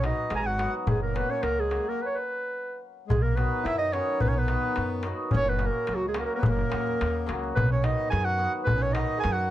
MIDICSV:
0, 0, Header, 1, 6, 480
1, 0, Start_track
1, 0, Key_signature, 5, "major"
1, 0, Tempo, 556019
1, 766, Time_signature, 2, 2, 24, 8
1, 8205, End_track
2, 0, Start_track
2, 0, Title_t, "Clarinet"
2, 0, Program_c, 0, 71
2, 47, Note_on_c, 0, 75, 77
2, 270, Note_off_c, 0, 75, 0
2, 304, Note_on_c, 0, 80, 94
2, 314, Note_on_c, 0, 82, 84
2, 327, Note_off_c, 0, 80, 0
2, 352, Note_on_c, 0, 80, 107
2, 365, Note_off_c, 0, 82, 0
2, 401, Note_on_c, 0, 78, 89
2, 414, Note_off_c, 0, 80, 0
2, 647, Note_off_c, 0, 78, 0
2, 761, Note_on_c, 0, 68, 78
2, 881, Note_off_c, 0, 68, 0
2, 885, Note_on_c, 0, 70, 73
2, 1006, Note_on_c, 0, 71, 86
2, 1019, Note_off_c, 0, 70, 0
2, 1125, Note_on_c, 0, 73, 89
2, 1138, Note_off_c, 0, 71, 0
2, 1234, Note_on_c, 0, 70, 95
2, 1247, Note_off_c, 0, 73, 0
2, 1379, Note_on_c, 0, 68, 83
2, 1392, Note_off_c, 0, 70, 0
2, 1625, Note_on_c, 0, 70, 78
2, 1638, Note_off_c, 0, 68, 0
2, 1745, Note_on_c, 0, 71, 77
2, 1758, Note_off_c, 0, 70, 0
2, 1776, Note_on_c, 0, 73, 81
2, 1788, Note_off_c, 0, 71, 0
2, 1851, Note_on_c, 0, 71, 87
2, 1864, Note_off_c, 0, 73, 0
2, 2444, Note_off_c, 0, 71, 0
2, 2672, Note_on_c, 0, 68, 88
2, 2778, Note_on_c, 0, 70, 77
2, 2791, Note_off_c, 0, 68, 0
2, 2902, Note_on_c, 0, 71, 86
2, 2915, Note_off_c, 0, 70, 0
2, 3158, Note_on_c, 0, 76, 108
2, 3171, Note_off_c, 0, 71, 0
2, 3262, Note_off_c, 0, 76, 0
2, 3267, Note_on_c, 0, 75, 100
2, 3388, Note_on_c, 0, 73, 91
2, 3401, Note_off_c, 0, 75, 0
2, 3633, Note_on_c, 0, 71, 91
2, 3646, Note_off_c, 0, 73, 0
2, 3697, Note_on_c, 0, 73, 80
2, 3710, Note_off_c, 0, 71, 0
2, 3787, Note_on_c, 0, 71, 83
2, 3800, Note_off_c, 0, 73, 0
2, 4373, Note_off_c, 0, 71, 0
2, 4623, Note_on_c, 0, 73, 121
2, 4738, Note_on_c, 0, 71, 99
2, 4751, Note_off_c, 0, 73, 0
2, 4888, Note_on_c, 0, 70, 90
2, 4901, Note_off_c, 0, 71, 0
2, 5135, Note_on_c, 0, 66, 96
2, 5148, Note_off_c, 0, 70, 0
2, 5237, Note_off_c, 0, 66, 0
2, 5252, Note_on_c, 0, 68, 81
2, 5340, Note_off_c, 0, 68, 0
2, 5353, Note_on_c, 0, 70, 75
2, 5392, Note_off_c, 0, 70, 0
2, 5397, Note_on_c, 0, 70, 80
2, 5457, Note_off_c, 0, 70, 0
2, 5483, Note_on_c, 0, 70, 87
2, 5501, Note_off_c, 0, 70, 0
2, 5506, Note_on_c, 0, 71, 77
2, 5611, Note_on_c, 0, 70, 95
2, 5624, Note_off_c, 0, 71, 0
2, 6309, Note_off_c, 0, 70, 0
2, 6519, Note_on_c, 0, 71, 107
2, 6640, Note_off_c, 0, 71, 0
2, 6662, Note_on_c, 0, 73, 81
2, 6772, Note_on_c, 0, 75, 95
2, 6785, Note_off_c, 0, 73, 0
2, 6986, Note_off_c, 0, 75, 0
2, 6991, Note_on_c, 0, 80, 108
2, 7120, Note_on_c, 0, 78, 104
2, 7133, Note_off_c, 0, 80, 0
2, 7367, Note_off_c, 0, 78, 0
2, 7463, Note_on_c, 0, 71, 112
2, 7616, Note_on_c, 0, 73, 94
2, 7629, Note_off_c, 0, 71, 0
2, 7713, Note_on_c, 0, 75, 85
2, 7726, Note_off_c, 0, 73, 0
2, 7938, Note_off_c, 0, 75, 0
2, 7943, Note_on_c, 0, 80, 114
2, 8049, Note_on_c, 0, 78, 96
2, 8062, Note_off_c, 0, 80, 0
2, 8205, Note_off_c, 0, 78, 0
2, 8205, End_track
3, 0, Start_track
3, 0, Title_t, "Accordion"
3, 0, Program_c, 1, 21
3, 47, Note_on_c, 1, 63, 76
3, 261, Note_on_c, 1, 68, 68
3, 270, Note_off_c, 1, 63, 0
3, 302, Note_off_c, 1, 68, 0
3, 302, Note_on_c, 1, 70, 65
3, 336, Note_on_c, 1, 68, 74
3, 341, Note_off_c, 1, 70, 0
3, 401, Note_on_c, 1, 66, 76
3, 406, Note_off_c, 1, 68, 0
3, 646, Note_off_c, 1, 66, 0
3, 748, Note_on_c, 1, 56, 82
3, 874, Note_off_c, 1, 56, 0
3, 899, Note_on_c, 1, 58, 65
3, 1002, Note_off_c, 1, 58, 0
3, 1004, Note_on_c, 1, 59, 70
3, 1120, Note_on_c, 1, 61, 76
3, 1131, Note_off_c, 1, 59, 0
3, 1235, Note_on_c, 1, 58, 63
3, 1240, Note_off_c, 1, 61, 0
3, 1367, Note_off_c, 1, 58, 0
3, 1377, Note_on_c, 1, 56, 65
3, 1615, Note_off_c, 1, 56, 0
3, 1625, Note_on_c, 1, 58, 78
3, 1733, Note_off_c, 1, 58, 0
3, 2655, Note_on_c, 1, 56, 88
3, 2785, Note_on_c, 1, 58, 74
3, 2787, Note_off_c, 1, 56, 0
3, 2896, Note_on_c, 1, 59, 73
3, 2913, Note_off_c, 1, 58, 0
3, 3135, Note_on_c, 1, 64, 91
3, 3152, Note_off_c, 1, 59, 0
3, 3277, Note_off_c, 1, 64, 0
3, 3277, Note_on_c, 1, 63, 76
3, 3390, Note_off_c, 1, 63, 0
3, 3396, Note_on_c, 1, 61, 67
3, 3627, Note_on_c, 1, 59, 77
3, 3641, Note_off_c, 1, 61, 0
3, 3659, Note_on_c, 1, 61, 69
3, 3702, Note_off_c, 1, 59, 0
3, 3745, Note_on_c, 1, 59, 91
3, 3750, Note_off_c, 1, 61, 0
3, 4352, Note_off_c, 1, 59, 0
3, 4587, Note_on_c, 1, 61, 87
3, 4714, Note_off_c, 1, 61, 0
3, 4727, Note_on_c, 1, 59, 84
3, 4822, Note_on_c, 1, 58, 72
3, 4844, Note_off_c, 1, 59, 0
3, 5075, Note_off_c, 1, 58, 0
3, 5093, Note_on_c, 1, 54, 84
3, 5216, Note_off_c, 1, 54, 0
3, 5227, Note_on_c, 1, 56, 67
3, 5326, Note_off_c, 1, 56, 0
3, 5334, Note_on_c, 1, 58, 77
3, 5362, Note_off_c, 1, 58, 0
3, 5375, Note_on_c, 1, 58, 56
3, 5441, Note_off_c, 1, 58, 0
3, 5492, Note_on_c, 1, 58, 91
3, 5499, Note_on_c, 1, 59, 70
3, 5558, Note_off_c, 1, 59, 0
3, 5572, Note_off_c, 1, 58, 0
3, 5585, Note_on_c, 1, 58, 91
3, 6296, Note_off_c, 1, 58, 0
3, 6515, Note_on_c, 1, 59, 77
3, 6638, Note_off_c, 1, 59, 0
3, 6652, Note_on_c, 1, 61, 76
3, 6759, Note_off_c, 1, 61, 0
3, 6769, Note_on_c, 1, 63, 74
3, 6992, Note_on_c, 1, 68, 81
3, 7008, Note_off_c, 1, 63, 0
3, 7112, Note_on_c, 1, 66, 74
3, 7117, Note_off_c, 1, 68, 0
3, 7363, Note_off_c, 1, 66, 0
3, 7450, Note_on_c, 1, 59, 83
3, 7560, Note_on_c, 1, 61, 75
3, 7585, Note_off_c, 1, 59, 0
3, 7687, Note_on_c, 1, 63, 77
3, 7701, Note_off_c, 1, 61, 0
3, 7923, Note_on_c, 1, 68, 81
3, 7948, Note_off_c, 1, 63, 0
3, 8046, Note_on_c, 1, 66, 70
3, 8061, Note_off_c, 1, 68, 0
3, 8205, Note_off_c, 1, 66, 0
3, 8205, End_track
4, 0, Start_track
4, 0, Title_t, "Hammered dulcimer"
4, 0, Program_c, 2, 15
4, 11, Note_on_c, 2, 54, 53
4, 16, Note_on_c, 2, 59, 43
4, 19, Note_on_c, 2, 63, 50
4, 27, Note_on_c, 2, 66, 56
4, 210, Note_off_c, 2, 59, 0
4, 211, Note_off_c, 2, 63, 0
4, 215, Note_off_c, 2, 66, 0
4, 489, Note_off_c, 2, 54, 0
4, 499, Note_on_c, 2, 54, 52
4, 501, Note_on_c, 2, 59, 55
4, 506, Note_on_c, 2, 63, 58
4, 511, Note_on_c, 2, 66, 67
4, 691, Note_off_c, 2, 59, 0
4, 694, Note_off_c, 2, 63, 0
4, 697, Note_off_c, 2, 66, 0
4, 809, Note_off_c, 2, 54, 0
4, 984, Note_on_c, 2, 54, 54
4, 984, Note_on_c, 2, 58, 54
4, 992, Note_on_c, 2, 61, 52
4, 995, Note_on_c, 2, 66, 65
4, 1173, Note_off_c, 2, 58, 0
4, 1177, Note_off_c, 2, 61, 0
4, 1179, Note_off_c, 2, 66, 0
4, 1454, Note_off_c, 2, 54, 0
4, 1464, Note_on_c, 2, 54, 53
4, 1471, Note_on_c, 2, 58, 53
4, 1475, Note_on_c, 2, 61, 46
4, 1482, Note_on_c, 2, 66, 66
4, 1657, Note_off_c, 2, 58, 0
4, 1659, Note_off_c, 2, 61, 0
4, 1662, Note_off_c, 2, 66, 0
4, 1770, Note_off_c, 2, 54, 0
4, 2904, Note_on_c, 2, 51, 54
4, 2904, Note_on_c, 2, 54, 53
4, 2912, Note_on_c, 2, 59, 52
4, 2914, Note_on_c, 2, 63, 54
4, 2922, Note_on_c, 2, 66, 71
4, 3098, Note_off_c, 2, 59, 0
4, 3098, Note_off_c, 2, 63, 0
4, 3103, Note_off_c, 2, 66, 0
4, 3375, Note_off_c, 2, 51, 0
4, 3376, Note_off_c, 2, 54, 0
4, 3385, Note_on_c, 2, 51, 66
4, 3387, Note_on_c, 2, 54, 58
4, 3391, Note_on_c, 2, 59, 57
4, 3393, Note_on_c, 2, 63, 55
4, 3403, Note_on_c, 2, 66, 73
4, 3577, Note_off_c, 2, 59, 0
4, 3578, Note_off_c, 2, 63, 0
4, 3583, Note_off_c, 2, 66, 0
4, 3854, Note_off_c, 2, 51, 0
4, 3860, Note_off_c, 2, 54, 0
4, 3865, Note_on_c, 2, 51, 67
4, 3870, Note_on_c, 2, 54, 58
4, 3874, Note_on_c, 2, 59, 60
4, 3881, Note_on_c, 2, 63, 47
4, 3883, Note_on_c, 2, 66, 60
4, 4059, Note_off_c, 2, 59, 0
4, 4063, Note_off_c, 2, 63, 0
4, 4063, Note_off_c, 2, 66, 0
4, 4339, Note_off_c, 2, 51, 0
4, 4346, Note_off_c, 2, 54, 0
4, 4350, Note_on_c, 2, 51, 63
4, 4356, Note_on_c, 2, 54, 62
4, 4360, Note_on_c, 2, 59, 56
4, 4362, Note_on_c, 2, 63, 57
4, 4371, Note_on_c, 2, 66, 73
4, 4542, Note_off_c, 2, 59, 0
4, 4543, Note_off_c, 2, 63, 0
4, 4547, Note_off_c, 2, 66, 0
4, 4650, Note_off_c, 2, 51, 0
4, 4650, Note_off_c, 2, 54, 0
4, 4819, Note_on_c, 2, 49, 60
4, 4823, Note_on_c, 2, 54, 47
4, 4827, Note_on_c, 2, 58, 54
4, 4827, Note_on_c, 2, 61, 55
4, 4836, Note_on_c, 2, 66, 67
4, 5015, Note_off_c, 2, 61, 0
4, 5016, Note_off_c, 2, 58, 0
4, 5020, Note_off_c, 2, 66, 0
4, 5297, Note_off_c, 2, 49, 0
4, 5297, Note_off_c, 2, 54, 0
4, 5307, Note_on_c, 2, 49, 60
4, 5307, Note_on_c, 2, 54, 60
4, 5313, Note_on_c, 2, 58, 59
4, 5314, Note_on_c, 2, 61, 56
4, 5321, Note_on_c, 2, 66, 67
4, 5498, Note_off_c, 2, 58, 0
4, 5499, Note_off_c, 2, 61, 0
4, 5502, Note_off_c, 2, 66, 0
4, 5768, Note_off_c, 2, 49, 0
4, 5776, Note_off_c, 2, 54, 0
4, 5779, Note_on_c, 2, 49, 64
4, 5786, Note_on_c, 2, 54, 51
4, 5789, Note_on_c, 2, 58, 53
4, 5793, Note_on_c, 2, 61, 50
4, 5795, Note_on_c, 2, 66, 55
4, 5976, Note_off_c, 2, 58, 0
4, 5979, Note_off_c, 2, 61, 0
4, 5979, Note_off_c, 2, 66, 0
4, 6260, Note_off_c, 2, 49, 0
4, 6260, Note_off_c, 2, 54, 0
4, 6270, Note_on_c, 2, 49, 76
4, 6270, Note_on_c, 2, 54, 74
4, 6275, Note_on_c, 2, 61, 60
4, 6277, Note_on_c, 2, 58, 68
4, 6282, Note_on_c, 2, 66, 74
4, 6459, Note_off_c, 2, 61, 0
4, 6461, Note_off_c, 2, 58, 0
4, 6463, Note_off_c, 2, 66, 0
4, 6571, Note_off_c, 2, 49, 0
4, 6571, Note_off_c, 2, 54, 0
4, 6751, Note_on_c, 2, 51, 58
4, 6757, Note_on_c, 2, 59, 53
4, 6759, Note_on_c, 2, 54, 53
4, 6764, Note_on_c, 2, 63, 43
4, 6768, Note_on_c, 2, 66, 63
4, 6941, Note_off_c, 2, 59, 0
4, 6945, Note_off_c, 2, 63, 0
4, 6946, Note_off_c, 2, 66, 0
4, 7220, Note_off_c, 2, 51, 0
4, 7226, Note_off_c, 2, 54, 0
4, 7230, Note_on_c, 2, 51, 61
4, 7234, Note_on_c, 2, 54, 47
4, 7237, Note_on_c, 2, 59, 54
4, 7242, Note_on_c, 2, 63, 46
4, 7246, Note_on_c, 2, 66, 63
4, 7421, Note_off_c, 2, 59, 0
4, 7422, Note_off_c, 2, 63, 0
4, 7425, Note_off_c, 2, 66, 0
4, 7718, Note_off_c, 2, 51, 0
4, 7724, Note_off_c, 2, 54, 0
4, 7728, Note_on_c, 2, 51, 60
4, 7734, Note_on_c, 2, 54, 56
4, 7738, Note_on_c, 2, 63, 52
4, 7739, Note_on_c, 2, 59, 52
4, 7745, Note_on_c, 2, 66, 69
4, 7911, Note_off_c, 2, 63, 0
4, 7912, Note_off_c, 2, 59, 0
4, 7915, Note_off_c, 2, 66, 0
4, 8186, Note_off_c, 2, 51, 0
4, 8195, Note_off_c, 2, 54, 0
4, 8205, End_track
5, 0, Start_track
5, 0, Title_t, "Upright bass"
5, 0, Program_c, 3, 32
5, 267, Note_on_c, 3, 32, 104
5, 561, Note_off_c, 3, 32, 0
5, 750, Note_on_c, 3, 30, 107
5, 1043, Note_off_c, 3, 30, 0
5, 1237, Note_on_c, 3, 37, 84
5, 1528, Note_off_c, 3, 37, 0
5, 2686, Note_on_c, 3, 35, 115
5, 2975, Note_off_c, 3, 35, 0
5, 3151, Note_on_c, 3, 42, 95
5, 3444, Note_off_c, 3, 42, 0
5, 3641, Note_on_c, 3, 35, 98
5, 3931, Note_off_c, 3, 35, 0
5, 4120, Note_on_c, 3, 42, 92
5, 4410, Note_off_c, 3, 42, 0
5, 4613, Note_on_c, 3, 30, 112
5, 4899, Note_off_c, 3, 30, 0
5, 5083, Note_on_c, 3, 37, 84
5, 5372, Note_off_c, 3, 37, 0
5, 5574, Note_on_c, 3, 30, 111
5, 5716, Note_off_c, 3, 30, 0
5, 5813, Note_on_c, 3, 40, 82
5, 6027, Note_off_c, 3, 40, 0
5, 6055, Note_on_c, 3, 39, 75
5, 6268, Note_off_c, 3, 39, 0
5, 6295, Note_on_c, 3, 37, 85
5, 6508, Note_off_c, 3, 37, 0
5, 6537, Note_on_c, 3, 35, 110
5, 6822, Note_off_c, 3, 35, 0
5, 7016, Note_on_c, 3, 42, 110
5, 7302, Note_off_c, 3, 42, 0
5, 7505, Note_on_c, 3, 35, 98
5, 7788, Note_off_c, 3, 35, 0
5, 7982, Note_on_c, 3, 42, 114
5, 8205, Note_off_c, 3, 42, 0
5, 8205, End_track
6, 0, Start_track
6, 0, Title_t, "Darbuka"
6, 32, Note_on_c, 9, 63, 75
6, 118, Note_off_c, 9, 63, 0
6, 262, Note_on_c, 9, 63, 74
6, 348, Note_off_c, 9, 63, 0
6, 400, Note_on_c, 9, 63, 34
6, 486, Note_off_c, 9, 63, 0
6, 512, Note_on_c, 9, 63, 75
6, 598, Note_off_c, 9, 63, 0
6, 752, Note_on_c, 9, 64, 98
6, 839, Note_off_c, 9, 64, 0
6, 1000, Note_on_c, 9, 63, 74
6, 1086, Note_off_c, 9, 63, 0
6, 1234, Note_on_c, 9, 63, 74
6, 1320, Note_off_c, 9, 63, 0
6, 1371, Note_on_c, 9, 63, 32
6, 1457, Note_off_c, 9, 63, 0
6, 1478, Note_on_c, 9, 63, 65
6, 1564, Note_off_c, 9, 63, 0
6, 2677, Note_on_c, 9, 64, 88
6, 2763, Note_off_c, 9, 64, 0
6, 2912, Note_on_c, 9, 63, 61
6, 2998, Note_off_c, 9, 63, 0
6, 3159, Note_on_c, 9, 63, 69
6, 3246, Note_off_c, 9, 63, 0
6, 3288, Note_on_c, 9, 63, 23
6, 3374, Note_off_c, 9, 63, 0
6, 3396, Note_on_c, 9, 63, 67
6, 3483, Note_off_c, 9, 63, 0
6, 3630, Note_on_c, 9, 64, 74
6, 3716, Note_off_c, 9, 64, 0
6, 3868, Note_on_c, 9, 63, 69
6, 3954, Note_off_c, 9, 63, 0
6, 4107, Note_on_c, 9, 63, 72
6, 4193, Note_off_c, 9, 63, 0
6, 4233, Note_on_c, 9, 63, 27
6, 4320, Note_off_c, 9, 63, 0
6, 4341, Note_on_c, 9, 63, 75
6, 4427, Note_off_c, 9, 63, 0
6, 4584, Note_on_c, 9, 64, 87
6, 4670, Note_off_c, 9, 64, 0
6, 4825, Note_on_c, 9, 63, 64
6, 4911, Note_off_c, 9, 63, 0
6, 5069, Note_on_c, 9, 63, 77
6, 5155, Note_off_c, 9, 63, 0
6, 5204, Note_on_c, 9, 63, 27
6, 5290, Note_off_c, 9, 63, 0
6, 5304, Note_on_c, 9, 63, 84
6, 5390, Note_off_c, 9, 63, 0
6, 5551, Note_on_c, 9, 64, 105
6, 5637, Note_off_c, 9, 64, 0
6, 5798, Note_on_c, 9, 63, 84
6, 5884, Note_off_c, 9, 63, 0
6, 5931, Note_on_c, 9, 63, 31
6, 6017, Note_off_c, 9, 63, 0
6, 6052, Note_on_c, 9, 63, 84
6, 6139, Note_off_c, 9, 63, 0
6, 6292, Note_on_c, 9, 63, 81
6, 6378, Note_off_c, 9, 63, 0
6, 6419, Note_on_c, 9, 63, 28
6, 6506, Note_off_c, 9, 63, 0
6, 6535, Note_on_c, 9, 64, 96
6, 6621, Note_off_c, 9, 64, 0
6, 6767, Note_on_c, 9, 63, 81
6, 6853, Note_off_c, 9, 63, 0
6, 7009, Note_on_c, 9, 63, 75
6, 7095, Note_off_c, 9, 63, 0
6, 7131, Note_on_c, 9, 63, 31
6, 7217, Note_off_c, 9, 63, 0
6, 7485, Note_on_c, 9, 64, 93
6, 7571, Note_off_c, 9, 64, 0
6, 7724, Note_on_c, 9, 63, 84
6, 7810, Note_off_c, 9, 63, 0
6, 7974, Note_on_c, 9, 63, 81
6, 8060, Note_off_c, 9, 63, 0
6, 8100, Note_on_c, 9, 63, 26
6, 8186, Note_off_c, 9, 63, 0
6, 8205, End_track
0, 0, End_of_file